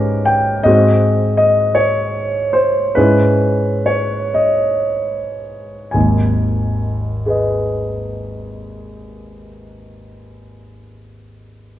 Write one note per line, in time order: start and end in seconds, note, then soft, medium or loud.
0.00 0.65 G#2 soft
0.00 0.69 C#4 soft
0.00 0.69 D#4 soft
0.00 0.69 G4 soft
0.00 0.69 A#4 medium
0.00 0.69 B4 soft
0.26 0.65 G5 medium
0.63 2.92 G#2 soft
0.63 2.92 C4 soft
0.63 2.92 F#4 soft
0.63 2.92 G#4 soft
0.63 1.36 D#5 medium
1.37 1.76 D#5 medium
1.75 2.54 C#5 medium
2.53 2.95 C5 medium
2.95 5.91 G#2 soft
2.95 5.90 C#4 soft
2.95 5.91 E4 soft
2.95 5.91 G#4 soft
2.95 3.86 B4 medium
3.86 4.36 C#5 soft
4.34 4.87 D#5 soft
5.91 9.48 G#1 soft
5.91 9.47 D#2 soft
5.91 9.45 G#5 soft
7.26 10.80 G#4 soft
7.26 10.82 B4 soft
7.26 10.84 D#5 soft